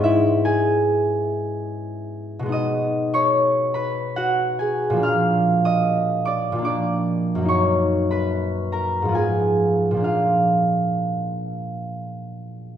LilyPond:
<<
  \new Staff \with { instrumentName = "Harp" } { \time 3/4 \key e \lydian \tempo 4 = 72 <e' gis' dis'' e'' gis''>8 <gis' gis''>2~ <gis' gis''>8 | \key bes \phrygian <ees'' ees'''>8. <des'' des'''>8. <ces'' ces'''>8 <ges' ges''>8 <aes' aes''>8 | <f'' f'''>8. <ees'' ees'''>8. <d'' d'''>8 <d'' d'''>4 | <des'' des'''>8. <ces'' ces'''>8. <bes' bes''>8 <aes' aes''>4 |
<f' f''>2. | }
  \new Staff \with { instrumentName = "Harp" } { \clef bass \time 3/4 \key e \lydian <gis, gis b>2. | \key bes \phrygian <ces aes ces' ees'>2. | <bes, f bes d'>2 <bes, f bes d'>4 | <ges, ges bes ees'>2 <aes, f ces' f'>4 |
<bes, f bes d'>2. | }
>>